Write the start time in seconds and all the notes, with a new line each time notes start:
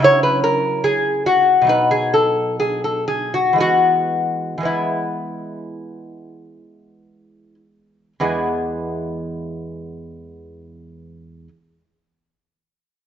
Already playing: C#3
0.00 F#3 E4
0.04 C#5
0.23 B4
0.44 A#4
0.84 G#4
1.26 F#4
1.62 B2 F#3
1.67 D#4 B4
1.91 G#4
2.14 A4
2.60 G#4
2.84 A4
3.08 G#4
3.34 F#4
3.53 E3 G#3
3.58 B3 F#4
4.58 E3 G#3
4.63 B3 E4
8.20 E2 G#3 B3 E4 G#4